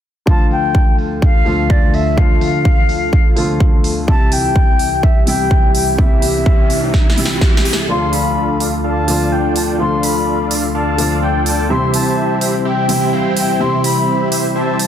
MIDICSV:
0, 0, Header, 1, 7, 480
1, 0, Start_track
1, 0, Tempo, 476190
1, 273, Time_signature, 4, 2, 24, 8
1, 14989, End_track
2, 0, Start_track
2, 0, Title_t, "Flute"
2, 0, Program_c, 0, 73
2, 273, Note_on_c, 0, 81, 105
2, 497, Note_off_c, 0, 81, 0
2, 512, Note_on_c, 0, 79, 103
2, 959, Note_off_c, 0, 79, 0
2, 1233, Note_on_c, 0, 77, 110
2, 1713, Note_on_c, 0, 74, 95
2, 1728, Note_off_c, 0, 77, 0
2, 1953, Note_on_c, 0, 76, 95
2, 1968, Note_off_c, 0, 74, 0
2, 2193, Note_on_c, 0, 77, 108
2, 2208, Note_off_c, 0, 76, 0
2, 3873, Note_off_c, 0, 77, 0
2, 4113, Note_on_c, 0, 81, 109
2, 4354, Note_on_c, 0, 79, 116
2, 4369, Note_off_c, 0, 81, 0
2, 5073, Note_on_c, 0, 76, 96
2, 5088, Note_off_c, 0, 79, 0
2, 5307, Note_off_c, 0, 76, 0
2, 5313, Note_on_c, 0, 79, 102
2, 5760, Note_off_c, 0, 79, 0
2, 5793, Note_on_c, 0, 79, 87
2, 6016, Note_off_c, 0, 79, 0
2, 6033, Note_on_c, 0, 76, 92
2, 7433, Note_off_c, 0, 76, 0
2, 7954, Note_on_c, 0, 84, 114
2, 8194, Note_on_c, 0, 83, 105
2, 8209, Note_off_c, 0, 84, 0
2, 8674, Note_off_c, 0, 83, 0
2, 8915, Note_on_c, 0, 81, 90
2, 9395, Note_on_c, 0, 79, 92
2, 9410, Note_off_c, 0, 81, 0
2, 9628, Note_off_c, 0, 79, 0
2, 9634, Note_on_c, 0, 81, 89
2, 9694, Note_off_c, 0, 81, 0
2, 9875, Note_on_c, 0, 84, 104
2, 10114, Note_on_c, 0, 83, 101
2, 10129, Note_off_c, 0, 84, 0
2, 10594, Note_off_c, 0, 83, 0
2, 10834, Note_on_c, 0, 81, 93
2, 11280, Note_off_c, 0, 81, 0
2, 11314, Note_on_c, 0, 79, 96
2, 11537, Note_off_c, 0, 79, 0
2, 11554, Note_on_c, 0, 81, 102
2, 11795, Note_on_c, 0, 84, 112
2, 11810, Note_off_c, 0, 81, 0
2, 12029, Note_off_c, 0, 84, 0
2, 12035, Note_on_c, 0, 81, 94
2, 12481, Note_off_c, 0, 81, 0
2, 12753, Note_on_c, 0, 79, 92
2, 13234, Note_on_c, 0, 77, 91
2, 13249, Note_off_c, 0, 79, 0
2, 13467, Note_off_c, 0, 77, 0
2, 13473, Note_on_c, 0, 79, 95
2, 13713, Note_on_c, 0, 84, 108
2, 13728, Note_off_c, 0, 79, 0
2, 13947, Note_off_c, 0, 84, 0
2, 13953, Note_on_c, 0, 83, 100
2, 14400, Note_off_c, 0, 83, 0
2, 14672, Note_on_c, 0, 81, 93
2, 14989, Note_off_c, 0, 81, 0
2, 14989, End_track
3, 0, Start_track
3, 0, Title_t, "Supersaw synth"
3, 0, Program_c, 1, 81
3, 7953, Note_on_c, 1, 62, 76
3, 7953, Note_on_c, 1, 65, 69
3, 7953, Note_on_c, 1, 69, 70
3, 7953, Note_on_c, 1, 74, 67
3, 7953, Note_on_c, 1, 77, 83
3, 8644, Note_off_c, 1, 62, 0
3, 8644, Note_off_c, 1, 65, 0
3, 8644, Note_off_c, 1, 69, 0
3, 8644, Note_off_c, 1, 74, 0
3, 8644, Note_off_c, 1, 77, 0
3, 8673, Note_on_c, 1, 74, 68
3, 8674, Note_on_c, 1, 62, 75
3, 8674, Note_on_c, 1, 65, 69
3, 8674, Note_on_c, 1, 69, 69
3, 8674, Note_on_c, 1, 77, 81
3, 8816, Note_off_c, 1, 62, 0
3, 8816, Note_off_c, 1, 65, 0
3, 8816, Note_off_c, 1, 69, 0
3, 8816, Note_off_c, 1, 74, 0
3, 8816, Note_off_c, 1, 77, 0
3, 8913, Note_on_c, 1, 62, 88
3, 8913, Note_on_c, 1, 65, 82
3, 8913, Note_on_c, 1, 69, 84
3, 8913, Note_on_c, 1, 74, 78
3, 8913, Note_on_c, 1, 77, 99
3, 9124, Note_off_c, 1, 62, 0
3, 9124, Note_off_c, 1, 65, 0
3, 9124, Note_off_c, 1, 69, 0
3, 9124, Note_off_c, 1, 74, 0
3, 9124, Note_off_c, 1, 77, 0
3, 9153, Note_on_c, 1, 62, 84
3, 9153, Note_on_c, 1, 65, 76
3, 9153, Note_on_c, 1, 69, 76
3, 9153, Note_on_c, 1, 74, 76
3, 9153, Note_on_c, 1, 77, 96
3, 9244, Note_off_c, 1, 62, 0
3, 9244, Note_off_c, 1, 65, 0
3, 9244, Note_off_c, 1, 74, 0
3, 9244, Note_off_c, 1, 77, 0
3, 9245, Note_off_c, 1, 69, 0
3, 9273, Note_on_c, 1, 65, 76
3, 9274, Note_on_c, 1, 62, 83
3, 9274, Note_on_c, 1, 69, 75
3, 9274, Note_on_c, 1, 74, 78
3, 9274, Note_on_c, 1, 77, 94
3, 9365, Note_off_c, 1, 62, 0
3, 9365, Note_off_c, 1, 65, 0
3, 9365, Note_off_c, 1, 69, 0
3, 9365, Note_off_c, 1, 74, 0
3, 9365, Note_off_c, 1, 77, 0
3, 9393, Note_on_c, 1, 62, 96
3, 9393, Note_on_c, 1, 65, 88
3, 9393, Note_on_c, 1, 69, 85
3, 9393, Note_on_c, 1, 74, 92
3, 9393, Note_on_c, 1, 79, 105
3, 9844, Note_off_c, 1, 62, 0
3, 9844, Note_off_c, 1, 65, 0
3, 9844, Note_off_c, 1, 69, 0
3, 9844, Note_off_c, 1, 74, 0
3, 9844, Note_off_c, 1, 79, 0
3, 9874, Note_on_c, 1, 62, 75
3, 9874, Note_on_c, 1, 65, 71
3, 9874, Note_on_c, 1, 69, 69
3, 9874, Note_on_c, 1, 74, 70
3, 9874, Note_on_c, 1, 77, 82
3, 10565, Note_off_c, 1, 62, 0
3, 10565, Note_off_c, 1, 65, 0
3, 10565, Note_off_c, 1, 69, 0
3, 10565, Note_off_c, 1, 74, 0
3, 10565, Note_off_c, 1, 77, 0
3, 10593, Note_on_c, 1, 62, 74
3, 10593, Note_on_c, 1, 65, 68
3, 10593, Note_on_c, 1, 69, 72
3, 10593, Note_on_c, 1, 74, 70
3, 10593, Note_on_c, 1, 77, 85
3, 10736, Note_off_c, 1, 62, 0
3, 10736, Note_off_c, 1, 65, 0
3, 10736, Note_off_c, 1, 69, 0
3, 10736, Note_off_c, 1, 74, 0
3, 10736, Note_off_c, 1, 77, 0
3, 10833, Note_on_c, 1, 62, 91
3, 10833, Note_on_c, 1, 65, 76
3, 10833, Note_on_c, 1, 69, 79
3, 10833, Note_on_c, 1, 74, 76
3, 10833, Note_on_c, 1, 77, 100
3, 11044, Note_off_c, 1, 62, 0
3, 11044, Note_off_c, 1, 65, 0
3, 11044, Note_off_c, 1, 69, 0
3, 11044, Note_off_c, 1, 74, 0
3, 11044, Note_off_c, 1, 77, 0
3, 11073, Note_on_c, 1, 62, 83
3, 11073, Note_on_c, 1, 65, 78
3, 11073, Note_on_c, 1, 69, 81
3, 11073, Note_on_c, 1, 74, 77
3, 11073, Note_on_c, 1, 77, 90
3, 11165, Note_off_c, 1, 62, 0
3, 11165, Note_off_c, 1, 65, 0
3, 11165, Note_off_c, 1, 69, 0
3, 11165, Note_off_c, 1, 74, 0
3, 11165, Note_off_c, 1, 77, 0
3, 11193, Note_on_c, 1, 62, 88
3, 11193, Note_on_c, 1, 65, 78
3, 11193, Note_on_c, 1, 69, 81
3, 11193, Note_on_c, 1, 74, 79
3, 11193, Note_on_c, 1, 77, 91
3, 11284, Note_off_c, 1, 62, 0
3, 11284, Note_off_c, 1, 65, 0
3, 11284, Note_off_c, 1, 69, 0
3, 11284, Note_off_c, 1, 74, 0
3, 11284, Note_off_c, 1, 77, 0
3, 11313, Note_on_c, 1, 62, 100
3, 11313, Note_on_c, 1, 65, 90
3, 11313, Note_on_c, 1, 69, 89
3, 11313, Note_on_c, 1, 74, 88
3, 11313, Note_on_c, 1, 79, 102
3, 11764, Note_off_c, 1, 62, 0
3, 11764, Note_off_c, 1, 65, 0
3, 11764, Note_off_c, 1, 69, 0
3, 11764, Note_off_c, 1, 74, 0
3, 11764, Note_off_c, 1, 79, 0
3, 11793, Note_on_c, 1, 64, 74
3, 11793, Note_on_c, 1, 67, 70
3, 11793, Note_on_c, 1, 72, 72
3, 11794, Note_on_c, 1, 60, 75
3, 11794, Note_on_c, 1, 76, 86
3, 12484, Note_off_c, 1, 64, 0
3, 12484, Note_off_c, 1, 67, 0
3, 12484, Note_off_c, 1, 72, 0
3, 12485, Note_off_c, 1, 60, 0
3, 12485, Note_off_c, 1, 76, 0
3, 12513, Note_on_c, 1, 60, 73
3, 12513, Note_on_c, 1, 64, 68
3, 12513, Note_on_c, 1, 67, 70
3, 12513, Note_on_c, 1, 72, 69
3, 12513, Note_on_c, 1, 76, 84
3, 12656, Note_off_c, 1, 60, 0
3, 12656, Note_off_c, 1, 64, 0
3, 12656, Note_off_c, 1, 67, 0
3, 12656, Note_off_c, 1, 72, 0
3, 12656, Note_off_c, 1, 76, 0
3, 12753, Note_on_c, 1, 60, 90
3, 12753, Note_on_c, 1, 64, 81
3, 12753, Note_on_c, 1, 67, 85
3, 12753, Note_on_c, 1, 72, 81
3, 12753, Note_on_c, 1, 76, 97
3, 12964, Note_off_c, 1, 60, 0
3, 12964, Note_off_c, 1, 64, 0
3, 12964, Note_off_c, 1, 67, 0
3, 12964, Note_off_c, 1, 72, 0
3, 12964, Note_off_c, 1, 76, 0
3, 12992, Note_on_c, 1, 60, 82
3, 12992, Note_on_c, 1, 67, 77
3, 12992, Note_on_c, 1, 76, 95
3, 12993, Note_on_c, 1, 64, 76
3, 12993, Note_on_c, 1, 72, 77
3, 13084, Note_off_c, 1, 60, 0
3, 13084, Note_off_c, 1, 64, 0
3, 13084, Note_off_c, 1, 67, 0
3, 13084, Note_off_c, 1, 72, 0
3, 13084, Note_off_c, 1, 76, 0
3, 13112, Note_on_c, 1, 60, 87
3, 13112, Note_on_c, 1, 64, 80
3, 13112, Note_on_c, 1, 67, 78
3, 13112, Note_on_c, 1, 72, 79
3, 13113, Note_on_c, 1, 76, 100
3, 13204, Note_off_c, 1, 60, 0
3, 13204, Note_off_c, 1, 64, 0
3, 13204, Note_off_c, 1, 67, 0
3, 13204, Note_off_c, 1, 72, 0
3, 13204, Note_off_c, 1, 76, 0
3, 13232, Note_on_c, 1, 60, 100
3, 13232, Note_on_c, 1, 64, 86
3, 13232, Note_on_c, 1, 72, 89
3, 13232, Note_on_c, 1, 79, 111
3, 13233, Note_on_c, 1, 67, 86
3, 13684, Note_off_c, 1, 60, 0
3, 13684, Note_off_c, 1, 64, 0
3, 13684, Note_off_c, 1, 67, 0
3, 13684, Note_off_c, 1, 72, 0
3, 13684, Note_off_c, 1, 79, 0
3, 13712, Note_on_c, 1, 60, 80
3, 13712, Note_on_c, 1, 64, 68
3, 13712, Note_on_c, 1, 67, 66
3, 13712, Note_on_c, 1, 72, 73
3, 13712, Note_on_c, 1, 76, 82
3, 14404, Note_off_c, 1, 60, 0
3, 14404, Note_off_c, 1, 64, 0
3, 14404, Note_off_c, 1, 67, 0
3, 14404, Note_off_c, 1, 72, 0
3, 14404, Note_off_c, 1, 76, 0
3, 14432, Note_on_c, 1, 60, 75
3, 14433, Note_on_c, 1, 64, 68
3, 14433, Note_on_c, 1, 67, 73
3, 14433, Note_on_c, 1, 72, 72
3, 14433, Note_on_c, 1, 76, 80
3, 14575, Note_off_c, 1, 60, 0
3, 14576, Note_off_c, 1, 64, 0
3, 14576, Note_off_c, 1, 67, 0
3, 14576, Note_off_c, 1, 72, 0
3, 14576, Note_off_c, 1, 76, 0
3, 14673, Note_on_c, 1, 60, 92
3, 14673, Note_on_c, 1, 64, 84
3, 14673, Note_on_c, 1, 67, 78
3, 14673, Note_on_c, 1, 72, 85
3, 14673, Note_on_c, 1, 76, 98
3, 14884, Note_off_c, 1, 60, 0
3, 14884, Note_off_c, 1, 64, 0
3, 14884, Note_off_c, 1, 67, 0
3, 14884, Note_off_c, 1, 72, 0
3, 14884, Note_off_c, 1, 76, 0
3, 14989, End_track
4, 0, Start_track
4, 0, Title_t, "Analog synth pad"
4, 0, Program_c, 2, 89
4, 272, Note_on_c, 2, 38, 83
4, 272, Note_on_c, 2, 65, 73
4, 272, Note_on_c, 2, 69, 84
4, 273, Note_on_c, 2, 50, 75
4, 4074, Note_off_c, 2, 38, 0
4, 4074, Note_off_c, 2, 65, 0
4, 4074, Note_off_c, 2, 69, 0
4, 4075, Note_off_c, 2, 50, 0
4, 4112, Note_on_c, 2, 36, 79
4, 4113, Note_on_c, 2, 48, 74
4, 4113, Note_on_c, 2, 64, 75
4, 4113, Note_on_c, 2, 67, 90
4, 7914, Note_off_c, 2, 36, 0
4, 7915, Note_off_c, 2, 48, 0
4, 7915, Note_off_c, 2, 64, 0
4, 7915, Note_off_c, 2, 67, 0
4, 7953, Note_on_c, 2, 38, 83
4, 7953, Note_on_c, 2, 50, 75
4, 7953, Note_on_c, 2, 65, 72
4, 7953, Note_on_c, 2, 69, 92
4, 11755, Note_off_c, 2, 38, 0
4, 11755, Note_off_c, 2, 50, 0
4, 11755, Note_off_c, 2, 65, 0
4, 11755, Note_off_c, 2, 69, 0
4, 11793, Note_on_c, 2, 48, 83
4, 11793, Note_on_c, 2, 55, 78
4, 11793, Note_on_c, 2, 64, 77
4, 11793, Note_on_c, 2, 72, 90
4, 14989, Note_off_c, 2, 48, 0
4, 14989, Note_off_c, 2, 55, 0
4, 14989, Note_off_c, 2, 64, 0
4, 14989, Note_off_c, 2, 72, 0
4, 14989, End_track
5, 0, Start_track
5, 0, Title_t, "Grand piano"
5, 0, Program_c, 3, 0
5, 260, Note_on_c, 3, 50, 79
5, 269, Note_on_c, 3, 53, 78
5, 276, Note_on_c, 3, 57, 79
5, 285, Note_on_c, 3, 65, 91
5, 469, Control_c, 3, 64, 127
5, 1438, Note_off_c, 3, 50, 0
5, 1442, Note_off_c, 3, 53, 0
5, 1446, Note_off_c, 3, 57, 0
5, 1450, Note_off_c, 3, 65, 0
5, 1461, Note_on_c, 3, 50, 81
5, 1469, Note_on_c, 3, 53, 73
5, 1477, Note_on_c, 3, 57, 76
5, 1485, Note_on_c, 3, 65, 87
5, 2158, Note_off_c, 3, 50, 0
5, 2162, Note_off_c, 3, 53, 0
5, 2166, Note_off_c, 3, 57, 0
5, 2170, Note_off_c, 3, 65, 0
5, 2181, Note_on_c, 3, 50, 86
5, 2189, Note_on_c, 3, 53, 76
5, 2198, Note_on_c, 3, 57, 75
5, 2205, Note_on_c, 3, 65, 92
5, 3358, Note_off_c, 3, 50, 0
5, 3362, Note_off_c, 3, 53, 0
5, 3367, Note_off_c, 3, 57, 0
5, 3370, Note_off_c, 3, 65, 0
5, 3382, Note_on_c, 3, 50, 85
5, 3390, Note_on_c, 3, 53, 73
5, 3398, Note_on_c, 3, 57, 75
5, 3406, Note_on_c, 3, 65, 92
5, 4079, Note_off_c, 3, 50, 0
5, 4083, Note_off_c, 3, 53, 0
5, 4087, Note_off_c, 3, 57, 0
5, 4091, Note_off_c, 3, 65, 0
5, 4101, Note_on_c, 3, 48, 85
5, 4109, Note_on_c, 3, 52, 80
5, 4117, Note_on_c, 3, 55, 77
5, 4125, Note_on_c, 3, 64, 92
5, 4129, Control_c, 3, 64, 0
5, 4303, Control_c, 3, 64, 127
5, 5278, Note_off_c, 3, 48, 0
5, 5283, Note_off_c, 3, 52, 0
5, 5287, Note_off_c, 3, 55, 0
5, 5290, Note_off_c, 3, 64, 0
5, 5301, Note_on_c, 3, 48, 83
5, 5309, Note_on_c, 3, 52, 75
5, 5316, Note_on_c, 3, 55, 74
5, 5325, Note_on_c, 3, 64, 98
5, 5998, Note_off_c, 3, 48, 0
5, 6002, Note_off_c, 3, 52, 0
5, 6006, Note_off_c, 3, 55, 0
5, 6010, Note_off_c, 3, 64, 0
5, 6020, Note_on_c, 3, 48, 82
5, 6028, Note_on_c, 3, 52, 77
5, 6036, Note_on_c, 3, 55, 78
5, 6044, Note_on_c, 3, 64, 92
5, 7198, Note_off_c, 3, 48, 0
5, 7202, Note_off_c, 3, 52, 0
5, 7206, Note_off_c, 3, 55, 0
5, 7210, Note_off_c, 3, 64, 0
5, 7220, Note_on_c, 3, 48, 82
5, 7229, Note_on_c, 3, 52, 74
5, 7237, Note_on_c, 3, 55, 80
5, 7244, Note_on_c, 3, 64, 98
5, 7918, Note_off_c, 3, 48, 0
5, 7922, Note_off_c, 3, 52, 0
5, 7926, Note_off_c, 3, 55, 0
5, 7930, Note_off_c, 3, 64, 0
5, 7941, Note_on_c, 3, 50, 84
5, 7949, Note_on_c, 3, 53, 78
5, 7957, Note_on_c, 3, 57, 76
5, 7965, Note_on_c, 3, 65, 97
5, 7968, Control_c, 3, 64, 0
5, 8139, Control_c, 3, 64, 127
5, 9118, Note_off_c, 3, 50, 0
5, 9122, Note_off_c, 3, 53, 0
5, 9126, Note_off_c, 3, 57, 0
5, 9130, Note_off_c, 3, 65, 0
5, 9141, Note_on_c, 3, 50, 83
5, 9149, Note_on_c, 3, 53, 77
5, 9157, Note_on_c, 3, 57, 77
5, 9165, Note_on_c, 3, 65, 96
5, 9838, Note_off_c, 3, 50, 0
5, 9842, Note_off_c, 3, 53, 0
5, 9846, Note_off_c, 3, 57, 0
5, 9850, Note_off_c, 3, 65, 0
5, 9861, Note_on_c, 3, 50, 81
5, 9869, Note_on_c, 3, 53, 80
5, 9877, Note_on_c, 3, 57, 82
5, 9885, Note_on_c, 3, 65, 93
5, 11038, Note_off_c, 3, 50, 0
5, 11042, Note_off_c, 3, 53, 0
5, 11046, Note_off_c, 3, 57, 0
5, 11050, Note_off_c, 3, 65, 0
5, 11061, Note_on_c, 3, 50, 86
5, 11069, Note_on_c, 3, 53, 81
5, 11078, Note_on_c, 3, 57, 74
5, 11086, Note_on_c, 3, 65, 93
5, 11758, Note_off_c, 3, 50, 0
5, 11762, Note_off_c, 3, 53, 0
5, 11767, Note_off_c, 3, 57, 0
5, 11771, Note_off_c, 3, 65, 0
5, 11781, Note_on_c, 3, 48, 85
5, 11789, Note_on_c, 3, 52, 77
5, 11797, Note_on_c, 3, 55, 80
5, 11805, Note_on_c, 3, 64, 92
5, 11808, Control_c, 3, 64, 0
5, 11989, Control_c, 3, 64, 127
5, 12958, Note_off_c, 3, 48, 0
5, 12962, Note_off_c, 3, 52, 0
5, 12967, Note_off_c, 3, 55, 0
5, 12970, Note_off_c, 3, 64, 0
5, 12981, Note_on_c, 3, 48, 86
5, 12989, Note_on_c, 3, 52, 80
5, 12997, Note_on_c, 3, 55, 80
5, 13005, Note_on_c, 3, 64, 95
5, 13678, Note_off_c, 3, 48, 0
5, 13683, Note_off_c, 3, 52, 0
5, 13686, Note_off_c, 3, 55, 0
5, 13690, Note_off_c, 3, 64, 0
5, 13700, Note_on_c, 3, 48, 84
5, 13709, Note_on_c, 3, 52, 77
5, 13717, Note_on_c, 3, 55, 80
5, 13725, Note_on_c, 3, 64, 90
5, 14878, Note_off_c, 3, 48, 0
5, 14882, Note_off_c, 3, 52, 0
5, 14886, Note_off_c, 3, 55, 0
5, 14890, Note_off_c, 3, 64, 0
5, 14989, End_track
6, 0, Start_track
6, 0, Title_t, "Riser"
6, 0, Program_c, 4, 103
6, 4113, Note_on_c, 4, 60, 76
6, 7953, Note_off_c, 4, 60, 0
6, 14989, End_track
7, 0, Start_track
7, 0, Title_t, "Drums"
7, 273, Note_on_c, 9, 36, 114
7, 373, Note_off_c, 9, 36, 0
7, 513, Note_on_c, 9, 46, 103
7, 614, Note_off_c, 9, 46, 0
7, 753, Note_on_c, 9, 36, 119
7, 854, Note_off_c, 9, 36, 0
7, 992, Note_on_c, 9, 46, 89
7, 1093, Note_off_c, 9, 46, 0
7, 1233, Note_on_c, 9, 36, 114
7, 1334, Note_off_c, 9, 36, 0
7, 1472, Note_on_c, 9, 46, 99
7, 1573, Note_off_c, 9, 46, 0
7, 1713, Note_on_c, 9, 36, 109
7, 1814, Note_off_c, 9, 36, 0
7, 1952, Note_on_c, 9, 46, 88
7, 2053, Note_off_c, 9, 46, 0
7, 2193, Note_on_c, 9, 36, 119
7, 2294, Note_off_c, 9, 36, 0
7, 2433, Note_on_c, 9, 46, 109
7, 2534, Note_off_c, 9, 46, 0
7, 2673, Note_on_c, 9, 36, 127
7, 2774, Note_off_c, 9, 36, 0
7, 2913, Note_on_c, 9, 46, 89
7, 3014, Note_off_c, 9, 46, 0
7, 3153, Note_on_c, 9, 36, 119
7, 3254, Note_off_c, 9, 36, 0
7, 3393, Note_on_c, 9, 46, 106
7, 3493, Note_off_c, 9, 46, 0
7, 3633, Note_on_c, 9, 36, 114
7, 3734, Note_off_c, 9, 36, 0
7, 3872, Note_on_c, 9, 46, 98
7, 3973, Note_off_c, 9, 46, 0
7, 4113, Note_on_c, 9, 36, 127
7, 4214, Note_off_c, 9, 36, 0
7, 4352, Note_on_c, 9, 46, 112
7, 4453, Note_off_c, 9, 46, 0
7, 4593, Note_on_c, 9, 36, 127
7, 4693, Note_off_c, 9, 36, 0
7, 4832, Note_on_c, 9, 46, 91
7, 4933, Note_off_c, 9, 46, 0
7, 5073, Note_on_c, 9, 36, 124
7, 5173, Note_off_c, 9, 36, 0
7, 5312, Note_on_c, 9, 46, 107
7, 5413, Note_off_c, 9, 46, 0
7, 5553, Note_on_c, 9, 36, 124
7, 5653, Note_off_c, 9, 36, 0
7, 5792, Note_on_c, 9, 46, 95
7, 5893, Note_off_c, 9, 46, 0
7, 6033, Note_on_c, 9, 36, 127
7, 6133, Note_off_c, 9, 36, 0
7, 6273, Note_on_c, 9, 46, 107
7, 6373, Note_off_c, 9, 46, 0
7, 6513, Note_on_c, 9, 36, 124
7, 6614, Note_off_c, 9, 36, 0
7, 6753, Note_on_c, 9, 46, 91
7, 6854, Note_off_c, 9, 46, 0
7, 6993, Note_on_c, 9, 36, 121
7, 6993, Note_on_c, 9, 38, 63
7, 7094, Note_off_c, 9, 36, 0
7, 7094, Note_off_c, 9, 38, 0
7, 7153, Note_on_c, 9, 38, 70
7, 7233, Note_on_c, 9, 46, 106
7, 7254, Note_off_c, 9, 38, 0
7, 7313, Note_on_c, 9, 38, 82
7, 7334, Note_off_c, 9, 46, 0
7, 7414, Note_off_c, 9, 38, 0
7, 7473, Note_on_c, 9, 36, 122
7, 7473, Note_on_c, 9, 38, 86
7, 7574, Note_off_c, 9, 36, 0
7, 7574, Note_off_c, 9, 38, 0
7, 7634, Note_on_c, 9, 38, 95
7, 7714, Note_on_c, 9, 46, 95
7, 7734, Note_off_c, 9, 38, 0
7, 7793, Note_on_c, 9, 38, 103
7, 7815, Note_off_c, 9, 46, 0
7, 7894, Note_off_c, 9, 38, 0
7, 8193, Note_on_c, 9, 46, 103
7, 8294, Note_off_c, 9, 46, 0
7, 8673, Note_on_c, 9, 46, 89
7, 8774, Note_off_c, 9, 46, 0
7, 9153, Note_on_c, 9, 46, 107
7, 9254, Note_off_c, 9, 46, 0
7, 9633, Note_on_c, 9, 46, 96
7, 9734, Note_off_c, 9, 46, 0
7, 10113, Note_on_c, 9, 46, 111
7, 10213, Note_off_c, 9, 46, 0
7, 10593, Note_on_c, 9, 46, 96
7, 10694, Note_off_c, 9, 46, 0
7, 11073, Note_on_c, 9, 46, 108
7, 11173, Note_off_c, 9, 46, 0
7, 11552, Note_on_c, 9, 46, 94
7, 11653, Note_off_c, 9, 46, 0
7, 12033, Note_on_c, 9, 46, 111
7, 12133, Note_off_c, 9, 46, 0
7, 12513, Note_on_c, 9, 46, 97
7, 12614, Note_off_c, 9, 46, 0
7, 12993, Note_on_c, 9, 46, 112
7, 13093, Note_off_c, 9, 46, 0
7, 13472, Note_on_c, 9, 46, 100
7, 13573, Note_off_c, 9, 46, 0
7, 13953, Note_on_c, 9, 46, 110
7, 14054, Note_off_c, 9, 46, 0
7, 14433, Note_on_c, 9, 46, 95
7, 14534, Note_off_c, 9, 46, 0
7, 14913, Note_on_c, 9, 46, 111
7, 14989, Note_off_c, 9, 46, 0
7, 14989, End_track
0, 0, End_of_file